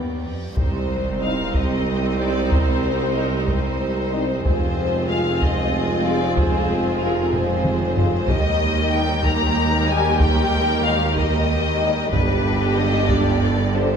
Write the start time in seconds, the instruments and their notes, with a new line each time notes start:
Already playing: cello section D#2, french horn section B3, viola section G4, violin section D5 G5, reverse cymbal
0.25 cello section F2
0.56 tuba C2, double bass section C2, cello section C2, viola section G3 C4, violin section D#4 C5, taiko, sub drop
1.21 french horn section G3 D#4, violin section F5
1.54 violin section D#5, taiko
2.19 french horn section G3 D#4, violin section D5
2.51 violin section C5, taiko
3.16 french horn section G3 D#4, violin section A#4
3.48 violin section C5, taiko
4.12 french horn section G3 D#4
4.44 double bass section F1, tuba F1, cello section F2, viola section G#3 C4, violin section F4 G#4 C5, taiko
5.09 french horn section G#3 F4, violin section F5
5.41 violin section D#5, taiko
6.05 french horn section G#3 F4, violin section D5
6.37 violin section C5, taiko
7.01 french horn section G#3 F4, violin section A#4
7.33 violin section C5, taiko low-mid
7.65 taiko mid
7.97 french horn section G#3 F4, taiko low
8.27 tuba D#2, double bass section D#2, cello section D#2, viola section D#3 G3, violin section G4 A#4 D#5, taiko
8.92 french horn section G3 D#4, violin section G5
9.24 violin section A#5, taiko
9.87 french horn section G3 D#4, violin section G#5
10.19 violin section G5, taiko
10.83 french horn section G3 D#4, violin section F5
11.15 violin section D#5, taiko
11.81 french horn section G3 D#4
12.12 double bass section G1, tuba G1, cello section G2, timpani G2, viola section D3 G3, violin section D4 G4 B4, taiko
12.76 french horn section G3 D4, violin section D#5
13.08 violin section D5, taiko
13.75 french horn section G3 D4, violin section C5